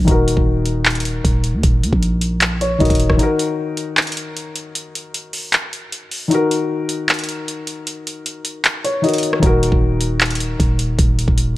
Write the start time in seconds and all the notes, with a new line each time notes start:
0.05 D#1 D#3 D#4, kick, closed hi-hat
0.09 F#4 A#4
0.28 closed hi-hat
0.37 D#1, kick
0.66 closed hi-hat
0.85 clap, closed hi-hat
0.90 closed hi-hat
0.95 closed hi-hat
1.00 closed hi-hat
1.05 closed hi-hat
1.25 D#1, kick, closed hi-hat
1.44 closed hi-hat
1.54 D#2
1.63 D#1, kick, closed hi-hat
1.83 D#2, closed hi-hat
1.93 A#1, kick
2.03 closed hi-hat
2.21 closed hi-hat
2.41 clap, closed hi-hat
2.61 C#5, closed hi-hat
2.78 D#1 D#3 D#4 F#4 A#4 D#5, kick, closed hi-hat
2.85 closed hi-hat
2.90 D#1, kick, closed hi-hat
2.95 closed hi-hat
3.00 closed hi-hat
3.10 D#1, kick, cross-stick
3.16 D#3 D#4, closed hi-hat
3.21 F#4 A#4
3.39 closed hi-hat
3.77 closed hi-hat
3.97 clap, closed hi-hat
4.02 closed hi-hat
4.07 closed hi-hat
4.12 closed hi-hat
4.17 closed hi-hat
4.37 closed hi-hat
4.56 closed hi-hat
4.75 closed hi-hat
4.95 closed hi-hat
5.14 closed hi-hat
5.33 open hi-hat
5.53 clap, closed hi-hat
5.73 closed hi-hat
5.92 closed hi-hat
6.11 open hi-hat
6.28 D#3 D#4, closed hi-hat
6.32 F#4 A#4
6.51 closed hi-hat
6.89 closed hi-hat
7.09 clap, closed hi-hat
7.14 closed hi-hat
7.19 closed hi-hat
7.24 closed hi-hat
7.29 closed hi-hat
7.48 closed hi-hat
7.67 closed hi-hat
7.87 closed hi-hat
8.07 closed hi-hat
8.26 closed hi-hat
8.45 closed hi-hat
8.64 clap, closed hi-hat
8.84 C#5, closed hi-hat
9.02 D#3 D#4 F#4 A#4 D#5, closed hi-hat
9.09 closed hi-hat
9.14 closed hi-hat
9.18 closed hi-hat
9.23 closed hi-hat
9.33 cross-stick
9.40 D#1 D#3 D#4, kick, closed hi-hat
9.44 F#4 A#4
9.63 closed hi-hat
9.72 D#1, kick
10.01 closed hi-hat
10.21 clap, closed hi-hat
10.26 closed hi-hat
10.30 closed hi-hat
10.35 closed hi-hat
10.40 closed hi-hat
10.60 D#1, kick, closed hi-hat
10.79 closed hi-hat
10.99 D#1, kick, closed hi-hat
11.19 closed hi-hat
11.28 D#1, kick
11.38 closed hi-hat